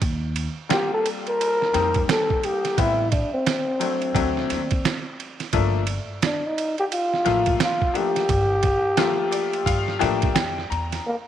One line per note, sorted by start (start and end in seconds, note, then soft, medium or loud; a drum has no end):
0.02 0.46 D#2 medium
0.02 kick medium
0.02 ride medium
0.36 ride medium
0.69 1.68 G3 medium
0.69 1.68 A#3 medium
0.69 1.69 C4 soft
0.69 1.68 F4 medium
0.69 0.91 G4 loud
0.69 snare loud
0.69 hi-hat pedal soft
0.69 ride medium
0.93 1.09 A4 medium
1.06 ride medium
1.27 2.05 A#4 loud
1.27 ride soft
1.41 ride medium
1.62 snare soft
1.73 2.01 F2 medium
1.73 2.72 G3 medium
1.73 2.72 A#3 medium
1.73 2.72 C4 medium
1.73 2.73 D#4 medium
1.73 snare soft
1.73 ride medium
1.94 kick medium
1.94 ride soft
2.09 2.46 A4 loud
2.09 snare loud
2.09 hi-hat pedal soft
2.09 ride medium
2.30 kick medium
2.44 2.81 G4 medium
2.44 ride soft
2.65 snare soft
2.65 ride soft
2.77 3.22 A1 loud
2.77 3.04 G3 medium
2.77 3.04 B3 medium
2.77 3.04 C4 medium
2.77 3.04 E4 medium
2.77 3.14 E4 medium
2.77 kick loud
2.77 ride medium
3.12 3.33 D4 medium
3.12 kick medium
3.12 ride medium
3.34 5.15 C4 medium
3.47 snare loud
3.47 hi-hat pedal soft
3.47 ride medium
3.80 4.13 F#3 medium
3.80 4.13 A3 medium
3.80 4.14 C4 medium
3.80 4.14 D4 medium
3.80 ride medium
4.02 ride soft
4.14 4.42 D2 loud
4.14 4.58 F#3 medium
4.14 4.58 A3 medium
4.14 4.58 C4 medium
4.14 4.58 D4 medium
4.14 kick medium
4.14 ride medium
4.37 snare soft
4.50 4.77 D#2 medium
4.50 snare soft
4.50 ride medium
4.71 kick medium
4.71 ride soft
4.85 snare loud
4.85 hi-hat pedal medium
4.85 ride medium
5.20 ride soft
5.40 snare soft
5.40 ride soft
5.53 5.97 G1 loud
5.53 5.80 F3 medium
5.53 5.80 A3 medium
5.53 5.80 A#3 medium
5.53 5.80 D4 medium
5.53 kick loud
5.53 ride medium
5.87 ride medium
6.22 6.48 D4 medium
6.22 snare loud
6.22 hi-hat pedal soft
6.22 ride medium
6.46 6.79 D#4 medium
6.58 ride medium
6.78 6.85 G4 medium
6.78 ride soft
6.92 7.57 F4 medium
6.92 ride medium
7.14 snare soft
7.25 7.53 A1 medium
7.25 7.92 F3 medium
7.25 7.93 A3 medium
7.25 7.92 A#3 medium
7.25 8.24 F4 medium
7.25 snare soft
7.25 ride medium
7.46 kick medium
7.46 ride soft
7.60 7.98 F4 medium
7.60 snare loud
7.60 hi-hat pedal soft
7.60 ride medium
7.82 kick medium
7.94 8.21 F3 medium
7.94 8.21 A3 medium
7.94 8.21 A#3 medium
7.94 8.21 D4 medium
7.94 10.72 G4 loud
7.94 ride soft
8.16 snare soft
8.16 ride soft
8.29 8.73 G1 loud
8.29 kick loud
8.29 ride medium
8.63 kick medium
8.63 ride medium
8.97 9.96 F3 medium
8.97 9.96 A3 medium
8.97 9.96 A#3 medium
8.97 9.97 F4 medium
8.97 snare medium
8.97 hi-hat pedal soft
8.97 ride medium
9.31 9.64 D5 medium
9.31 ride medium
9.53 ride soft
9.66 9.94 G2 medium
9.66 9.99 F5 medium
9.66 kick medium
9.66 ride medium
9.88 snare soft
9.99 10.29 A2 medium
9.99 10.27 F3 medium
9.99 10.27 A3 medium
9.99 10.27 A#3 medium
9.99 10.28 D4 medium
9.99 10.33 G5 medium
9.99 snare soft
9.99 ride medium
10.22 kick medium
10.22 ride soft
10.35 10.63 F2 medium
10.35 10.67 G5 medium
10.35 snare loud
10.35 hi-hat pedal medium
10.35 ride medium
10.58 snare soft
10.70 10.98 E2 medium
10.70 11.02 A#5 medium
10.70 ride soft
10.92 snare soft
10.92 ride soft
11.06 11.16 A#3 medium